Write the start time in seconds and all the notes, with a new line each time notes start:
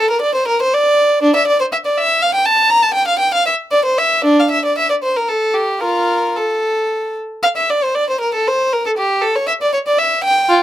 Already playing: A4
0.10 A#4
0.22 D5
0.35 C5
0.48 A#4
0.62 C5
0.74 D5
1.23 D4
1.36 E5
1.47 D5
1.61 C5
1.72 E5
1.86 D5
1.98 E5
2.22 F5
2.34 G5
2.46 A5
2.70 A#5
2.83 A5
2.94 G5
3.08 F5
3.19 G5
3.34 F5
3.46 E5
3.71 D5
3.85 C5
3.98 E5
4.25 D4
4.40 F5
4.51 E5
4.65 D5
4.78 E5
4.90 D5
5.03 C5
5.16 A#4
5.29 A4
5.54 G4
5.80 F4 A#4
6.36 A4
7.43 F5
7.57 E5
7.70 D5
7.84 C5
7.95 D5
8.10 C5
8.21 A#4
8.34 A4
8.48 C5
8.73 A#4
8.86 A4
8.98 G4
9.22 A4
9.36 C#5
9.47 E5
9.62 D5
9.73 C#5
9.87 D5
9.99 E5
10.24 G5
10.49 F4